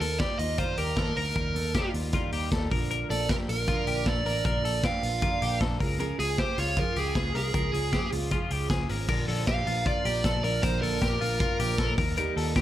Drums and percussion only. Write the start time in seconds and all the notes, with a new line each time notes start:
0.01 open hi-hat
0.20 kick, snare, closed hi-hat
0.39 open hi-hat
0.58 kick, closed hi-hat
0.77 open hi-hat
0.97 kick, snare, closed hi-hat
1.16 open hi-hat
1.36 kick, closed hi-hat
1.56 open hi-hat
1.74 kick, snare, closed hi-hat
1.94 open hi-hat
2.13 kick, closed hi-hat
2.32 open hi-hat
2.52 kick, snare, closed hi-hat
2.71 kick, open hi-hat
2.91 closed hi-hat
3.11 open hi-hat
3.29 kick, snare, closed hi-hat
3.49 open hi-hat
3.68 kick, closed hi-hat
3.87 open hi-hat
4.06 kick, snare, closed hi-hat
4.26 open hi-hat
4.45 kick, closed hi-hat
4.65 open hi-hat
4.83 kick, snare, closed hi-hat
5.03 open hi-hat
5.22 kick, closed hi-hat
5.42 open hi-hat
5.61 kick, snare
5.80 kick, open hi-hat
6.00 closed hi-hat
6.20 open hi-hat
6.38 kick, snare, closed hi-hat
6.58 open hi-hat
6.77 kick, closed hi-hat
6.96 open hi-hat
7.15 kick, snare, closed hi-hat
7.35 open hi-hat
7.54 kick, closed hi-hat
7.74 open hi-hat
7.93 kick, snare, closed hi-hat
8.12 open hi-hat
8.31 kick, closed hi-hat
8.50 open hi-hat
8.70 kick, snare, closed hi-hat
8.89 open hi-hat
9.08 kick, crash
9.29 open hi-hat
9.47 kick, snare, closed hi-hat
9.67 open hi-hat
9.86 kick, closed hi-hat
10.05 open hi-hat
10.24 kick, snare, closed hi-hat
10.44 open hi-hat
10.63 kick, closed hi-hat
10.83 open hi-hat
11.02 kick, snare, closed hi-hat
11.21 open hi-hat
11.40 kick, closed hi-hat
11.59 open hi-hat
11.78 kick, snare, closed hi-hat
11.98 kick, open hi-hat
12.17 closed hi-hat
12.37 open hi-hat
12.56 kick, snare, closed hi-hat